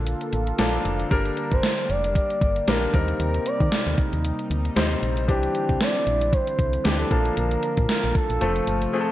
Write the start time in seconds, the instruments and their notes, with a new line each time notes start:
Already playing: fm bass A#1, analog synth pad D3 A#3 F4 A4, grand piano F3 A#3 D4 A4
0.07 closed hi-hat
0.21 closed hi-hat
0.33 fm bass A1, closed hi-hat
0.47 closed hi-hat
0.58 fm bass A#1, grand piano F3 A#3 D4 A4, snare, closed hi-hat
0.73 closed hi-hat
0.85 fm bass F1, closed hi-hat
0.99 closed hi-hat
1.11 fm bass G1, grand piano G3 A#3 D4 A#4, analog synth pad G3 A#3 G4, kick, closed hi-hat
1.25 closed hi-hat
1.37 analog synth lead A#4, closed hi-hat
1.52 fm bass G1, analog synth lead C5, kick, closed hi-hat
1.63 snare, closed hi-hat
1.78 closed hi-hat
1.89 fm bass F1, analog synth lead D5, closed hi-hat
2.04 closed hi-hat
2.15 analog synth lead D5, kick, closed hi-hat
2.30 closed hi-hat
2.41 fm bass G1, kick, closed hi-hat
2.56 closed hi-hat
2.67 fm bass A#1, grand piano G3 A#3 D4 A#4, analog synth lead A#4, snare, closed hi-hat
2.82 closed hi-hat
2.93 fm bass D#2, analog synth pad C3 G3 D#4, grand piano G3 C4 D#4 A#4, kick, closed hi-hat
3.08 closed hi-hat
3.20 fm bass D#2, analog synth lead A#4, closed hi-hat
3.34 closed hi-hat
3.46 analog synth lead D5, closed hi-hat
3.60 fm bass D#3, kick, closed hi-hat
3.72 snare, closed hi-hat
3.87 fm bass D#2, closed hi-hat
3.98 kick, closed hi-hat
4.13 fm bass D#2, closed hi-hat
4.25 closed hi-hat
4.39 closed hi-hat
4.50 fm bass D2, closed hi-hat
4.65 closed hi-hat
4.76 fm bass D#2, grand piano G3 C4 D#4 C5, snare, closed hi-hat
4.91 closed hi-hat
5.03 fm bass A#1, closed hi-hat
5.17 closed hi-hat
5.28 fm bass C2, analog synth pad D3 G3 C4 E4, grand piano E3 C4 D4 G4, analog synth lead G4, kick, closed hi-hat
5.43 closed hi-hat
5.55 closed hi-hat
5.69 fm bass C2, kick, closed hi-hat
5.81 analog synth lead D5, snare, closed hi-hat
5.95 closed hi-hat
6.07 fm bass A#1, closed hi-hat
6.21 closed hi-hat
6.33 analog synth lead C5, kick, closed hi-hat
6.47 closed hi-hat
6.59 fm bass C2, kick, closed hi-hat
6.73 closed hi-hat
6.84 fm bass D2, grand piano E3 C4 D4 G4, analog synth lead G4, snare, closed hi-hat
6.99 analog synth lead A4, closed hi-hat
7.10 fm bass A#1, analog synth pad D3 F3 A#3 F4, grand piano F3 A#3 D4 A5, kick, closed hi-hat
7.25 closed hi-hat
7.37 fm bass A#1, analog synth lead A#4, closed hi-hat
7.51 closed hi-hat
7.63 closed hi-hat
7.77 fm bass A#2, kick, closed hi-hat
7.89 analog synth lead A#4, snare, closed hi-hat
8.03 fm bass A#1, closed hi-hat
8.15 analog synth lead A4, kick, closed hi-hat
8.30 fm bass A#1, closed hi-hat
8.41 fm bass F1, analog synth pad C3 F3 A3, grand piano F3 A3 C4 A4, closed hi-hat
8.56 closed hi-hat
8.67 fm bass G1, closed hi-hat
8.82 closed hi-hat
8.93 grand piano F3 A3 C4 G#4
9.00 grand piano A4